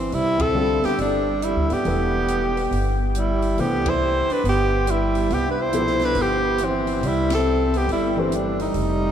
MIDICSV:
0, 0, Header, 1, 7, 480
1, 0, Start_track
1, 0, Key_signature, 0, "major"
1, 0, Tempo, 431344
1, 140, Time_signature, 4, 2, 24, 8
1, 10143, End_track
2, 0, Start_track
2, 0, Title_t, "Tenor saxophone"
2, 0, Program_c, 0, 66
2, 0, Note_on_c, 0, 60, 81
2, 159, Note_on_c, 0, 64, 99
2, 176, Note_off_c, 0, 60, 0
2, 465, Note_on_c, 0, 69, 104
2, 481, Note_off_c, 0, 64, 0
2, 946, Note_on_c, 0, 67, 90
2, 962, Note_off_c, 0, 69, 0
2, 1109, Note_off_c, 0, 67, 0
2, 1126, Note_on_c, 0, 62, 88
2, 1607, Note_on_c, 0, 64, 78
2, 1623, Note_off_c, 0, 62, 0
2, 1929, Note_on_c, 0, 67, 86
2, 1945, Note_off_c, 0, 64, 0
2, 3353, Note_off_c, 0, 67, 0
2, 3547, Note_on_c, 0, 64, 80
2, 4011, Note_on_c, 0, 67, 93
2, 4028, Note_off_c, 0, 64, 0
2, 4334, Note_on_c, 0, 72, 95
2, 4351, Note_off_c, 0, 67, 0
2, 4816, Note_on_c, 0, 71, 92
2, 4833, Note_off_c, 0, 72, 0
2, 4966, Note_off_c, 0, 71, 0
2, 4995, Note_on_c, 0, 67, 96
2, 5461, Note_on_c, 0, 64, 82
2, 5478, Note_off_c, 0, 67, 0
2, 5941, Note_on_c, 0, 67, 95
2, 5957, Note_off_c, 0, 64, 0
2, 6124, Note_off_c, 0, 67, 0
2, 6131, Note_on_c, 0, 71, 67
2, 6245, Note_on_c, 0, 72, 102
2, 6262, Note_off_c, 0, 71, 0
2, 6734, Note_on_c, 0, 71, 96
2, 6751, Note_off_c, 0, 72, 0
2, 6920, Note_on_c, 0, 67, 95
2, 6937, Note_off_c, 0, 71, 0
2, 7396, Note_on_c, 0, 60, 81
2, 7413, Note_off_c, 0, 67, 0
2, 7868, Note_on_c, 0, 64, 89
2, 7885, Note_off_c, 0, 60, 0
2, 8155, Note_off_c, 0, 64, 0
2, 8175, Note_on_c, 0, 69, 92
2, 8652, Note_on_c, 0, 67, 83
2, 8669, Note_off_c, 0, 69, 0
2, 8802, Note_off_c, 0, 67, 0
2, 8818, Note_on_c, 0, 64, 88
2, 9115, Note_on_c, 0, 60, 75
2, 9132, Note_off_c, 0, 64, 0
2, 9295, Note_on_c, 0, 62, 70
2, 9311, Note_off_c, 0, 60, 0
2, 9586, Note_off_c, 0, 62, 0
2, 9592, Note_on_c, 0, 63, 81
2, 10143, Note_off_c, 0, 63, 0
2, 10143, End_track
3, 0, Start_track
3, 0, Title_t, "Grand piano"
3, 0, Program_c, 1, 0
3, 607, Note_on_c, 1, 50, 63
3, 610, Note_on_c, 1, 55, 57
3, 617, Note_on_c, 1, 65, 60
3, 620, Note_on_c, 1, 60, 56
3, 633, Note_on_c, 1, 69, 69
3, 1344, Note_off_c, 1, 50, 0
3, 1345, Note_off_c, 1, 55, 0
3, 1349, Note_off_c, 1, 65, 0
3, 1350, Note_off_c, 1, 60, 0
3, 1357, Note_off_c, 1, 69, 0
3, 2054, Note_on_c, 1, 52, 56
3, 2065, Note_on_c, 1, 57, 53
3, 2070, Note_on_c, 1, 62, 52
3, 2070, Note_on_c, 1, 67, 51
3, 2079, Note_on_c, 1, 71, 64
3, 2788, Note_off_c, 1, 52, 0
3, 2793, Note_off_c, 1, 57, 0
3, 2796, Note_off_c, 1, 62, 0
3, 2796, Note_off_c, 1, 67, 0
3, 2800, Note_off_c, 1, 71, 0
3, 3991, Note_on_c, 1, 52, 58
3, 3991, Note_on_c, 1, 57, 51
3, 4004, Note_on_c, 1, 62, 52
3, 4004, Note_on_c, 1, 67, 56
3, 4004, Note_on_c, 1, 72, 63
3, 4716, Note_off_c, 1, 57, 0
3, 4717, Note_off_c, 1, 52, 0
3, 4723, Note_off_c, 1, 62, 0
3, 4723, Note_off_c, 1, 67, 0
3, 4723, Note_off_c, 1, 72, 0
3, 6376, Note_on_c, 1, 53, 63
3, 6380, Note_on_c, 1, 47, 59
3, 6382, Note_on_c, 1, 64, 58
3, 6390, Note_on_c, 1, 69, 60
3, 6396, Note_on_c, 1, 72, 69
3, 7108, Note_off_c, 1, 53, 0
3, 7109, Note_off_c, 1, 47, 0
3, 7111, Note_off_c, 1, 64, 0
3, 7115, Note_off_c, 1, 69, 0
3, 7118, Note_off_c, 1, 72, 0
3, 9087, Note_on_c, 1, 52, 66
3, 9093, Note_on_c, 1, 57, 58
3, 9097, Note_on_c, 1, 62, 60
3, 9104, Note_on_c, 1, 67, 60
3, 9110, Note_on_c, 1, 71, 70
3, 9704, Note_off_c, 1, 52, 0
3, 9707, Note_off_c, 1, 57, 0
3, 9709, Note_off_c, 1, 62, 0
3, 9712, Note_off_c, 1, 67, 0
3, 9715, Note_off_c, 1, 71, 0
3, 10143, End_track
4, 0, Start_track
4, 0, Title_t, "Alto saxophone"
4, 0, Program_c, 2, 65
4, 0, Note_on_c, 2, 52, 68
4, 145, Note_on_c, 2, 55, 78
4, 162, Note_off_c, 2, 52, 0
4, 433, Note_on_c, 2, 60, 82
4, 450, Note_off_c, 2, 55, 0
4, 913, Note_on_c, 2, 59, 72
4, 930, Note_off_c, 2, 60, 0
4, 1083, Note_off_c, 2, 59, 0
4, 1089, Note_on_c, 2, 55, 73
4, 1579, Note_off_c, 2, 55, 0
4, 1579, Note_on_c, 2, 55, 72
4, 1893, Note_on_c, 2, 59, 73
4, 1909, Note_off_c, 2, 55, 0
4, 3335, Note_off_c, 2, 59, 0
4, 3502, Note_on_c, 2, 55, 76
4, 4000, Note_on_c, 2, 59, 78
4, 4017, Note_off_c, 2, 55, 0
4, 4315, Note_on_c, 2, 64, 80
4, 4331, Note_off_c, 2, 59, 0
4, 4796, Note_on_c, 2, 62, 75
4, 4813, Note_off_c, 2, 64, 0
4, 4944, Note_off_c, 2, 62, 0
4, 4951, Note_on_c, 2, 59, 80
4, 5422, Note_on_c, 2, 55, 72
4, 5439, Note_off_c, 2, 59, 0
4, 5912, Note_on_c, 2, 59, 82
4, 5929, Note_off_c, 2, 55, 0
4, 6102, Note_off_c, 2, 59, 0
4, 6108, Note_on_c, 2, 62, 54
4, 6225, Note_on_c, 2, 64, 82
4, 6241, Note_off_c, 2, 62, 0
4, 6715, Note_on_c, 2, 62, 73
4, 6731, Note_off_c, 2, 64, 0
4, 6884, Note_on_c, 2, 59, 77
4, 6901, Note_off_c, 2, 62, 0
4, 7358, Note_on_c, 2, 52, 70
4, 7375, Note_off_c, 2, 59, 0
4, 7839, Note_on_c, 2, 55, 81
4, 7856, Note_off_c, 2, 52, 0
4, 8140, Note_off_c, 2, 55, 0
4, 8153, Note_on_c, 2, 60, 77
4, 8626, Note_on_c, 2, 59, 66
4, 8643, Note_off_c, 2, 60, 0
4, 8789, Note_off_c, 2, 59, 0
4, 8821, Note_on_c, 2, 55, 76
4, 9124, Note_on_c, 2, 52, 63
4, 9140, Note_off_c, 2, 55, 0
4, 9290, Note_on_c, 2, 55, 66
4, 9306, Note_off_c, 2, 52, 0
4, 9584, Note_off_c, 2, 55, 0
4, 9600, Note_on_c, 2, 55, 63
4, 10143, Note_off_c, 2, 55, 0
4, 10143, End_track
5, 0, Start_track
5, 0, Title_t, "Upright bass"
5, 0, Program_c, 3, 32
5, 138, Note_on_c, 3, 36, 77
5, 886, Note_off_c, 3, 36, 0
5, 1096, Note_on_c, 3, 31, 76
5, 1696, Note_off_c, 3, 31, 0
5, 1735, Note_on_c, 3, 38, 58
5, 1888, Note_off_c, 3, 38, 0
5, 1901, Note_on_c, 3, 43, 61
5, 2051, Note_off_c, 3, 43, 0
5, 2061, Note_on_c, 3, 28, 76
5, 2980, Note_off_c, 3, 28, 0
5, 3018, Note_on_c, 3, 31, 72
5, 3938, Note_off_c, 3, 31, 0
5, 3976, Note_on_c, 3, 36, 77
5, 4727, Note_off_c, 3, 36, 0
5, 4940, Note_on_c, 3, 31, 71
5, 5858, Note_off_c, 3, 31, 0
5, 5897, Note_on_c, 3, 36, 73
5, 6816, Note_off_c, 3, 36, 0
5, 6848, Note_on_c, 3, 31, 74
5, 7771, Note_off_c, 3, 31, 0
5, 7802, Note_on_c, 3, 36, 81
5, 8726, Note_off_c, 3, 36, 0
5, 8766, Note_on_c, 3, 31, 73
5, 9687, Note_off_c, 3, 31, 0
5, 9729, Note_on_c, 3, 29, 76
5, 10143, Note_off_c, 3, 29, 0
5, 10143, End_track
6, 0, Start_track
6, 0, Title_t, "Muted upright bass strokes"
6, 934, Note_on_c, 9, 29, 36
6, 1045, Note_off_c, 9, 29, 0
6, 4763, Note_on_c, 9, 29, 37
6, 4874, Note_off_c, 9, 29, 0
6, 10143, End_track
7, 0, Start_track
7, 0, Title_t, "Drums"
7, 136, Note_on_c, 9, 46, 38
7, 247, Note_off_c, 9, 46, 0
7, 440, Note_on_c, 9, 51, 66
7, 444, Note_on_c, 9, 36, 79
7, 552, Note_off_c, 9, 51, 0
7, 555, Note_off_c, 9, 36, 0
7, 930, Note_on_c, 9, 46, 34
7, 933, Note_on_c, 9, 38, 34
7, 1041, Note_off_c, 9, 46, 0
7, 1044, Note_off_c, 9, 38, 0
7, 1096, Note_on_c, 9, 46, 42
7, 1208, Note_off_c, 9, 46, 0
7, 1581, Note_on_c, 9, 42, 48
7, 1693, Note_off_c, 9, 42, 0
7, 1891, Note_on_c, 9, 46, 35
7, 2002, Note_off_c, 9, 46, 0
7, 2058, Note_on_c, 9, 46, 39
7, 2169, Note_off_c, 9, 46, 0
7, 2541, Note_on_c, 9, 42, 48
7, 2652, Note_off_c, 9, 42, 0
7, 2860, Note_on_c, 9, 46, 36
7, 2971, Note_off_c, 9, 46, 0
7, 3031, Note_on_c, 9, 46, 43
7, 3142, Note_off_c, 9, 46, 0
7, 3502, Note_on_c, 9, 42, 47
7, 3613, Note_off_c, 9, 42, 0
7, 3807, Note_on_c, 9, 46, 34
7, 3919, Note_off_c, 9, 46, 0
7, 3981, Note_on_c, 9, 46, 40
7, 4092, Note_off_c, 9, 46, 0
7, 4292, Note_on_c, 9, 51, 70
7, 4296, Note_on_c, 9, 36, 74
7, 4403, Note_off_c, 9, 51, 0
7, 4407, Note_off_c, 9, 36, 0
7, 4783, Note_on_c, 9, 46, 34
7, 4894, Note_off_c, 9, 46, 0
7, 4951, Note_on_c, 9, 46, 41
7, 5063, Note_off_c, 9, 46, 0
7, 5419, Note_on_c, 9, 42, 50
7, 5530, Note_off_c, 9, 42, 0
7, 5730, Note_on_c, 9, 46, 35
7, 5842, Note_off_c, 9, 46, 0
7, 5902, Note_on_c, 9, 46, 41
7, 6013, Note_off_c, 9, 46, 0
7, 6373, Note_on_c, 9, 42, 50
7, 6484, Note_off_c, 9, 42, 0
7, 6531, Note_on_c, 9, 38, 29
7, 6642, Note_off_c, 9, 38, 0
7, 6671, Note_on_c, 9, 46, 35
7, 6682, Note_on_c, 9, 38, 39
7, 6782, Note_off_c, 9, 46, 0
7, 6793, Note_off_c, 9, 38, 0
7, 6842, Note_on_c, 9, 46, 42
7, 6953, Note_off_c, 9, 46, 0
7, 7324, Note_on_c, 9, 42, 47
7, 7435, Note_off_c, 9, 42, 0
7, 7644, Note_on_c, 9, 46, 36
7, 7755, Note_off_c, 9, 46, 0
7, 7821, Note_on_c, 9, 46, 41
7, 7932, Note_off_c, 9, 46, 0
7, 8125, Note_on_c, 9, 51, 62
7, 8128, Note_on_c, 9, 38, 73
7, 8236, Note_off_c, 9, 51, 0
7, 8240, Note_off_c, 9, 38, 0
7, 8610, Note_on_c, 9, 46, 36
7, 8721, Note_off_c, 9, 46, 0
7, 8778, Note_on_c, 9, 46, 41
7, 8889, Note_off_c, 9, 46, 0
7, 9257, Note_on_c, 9, 42, 47
7, 9368, Note_off_c, 9, 42, 0
7, 9564, Note_on_c, 9, 46, 34
7, 9676, Note_off_c, 9, 46, 0
7, 9727, Note_on_c, 9, 46, 41
7, 9838, Note_off_c, 9, 46, 0
7, 10143, End_track
0, 0, End_of_file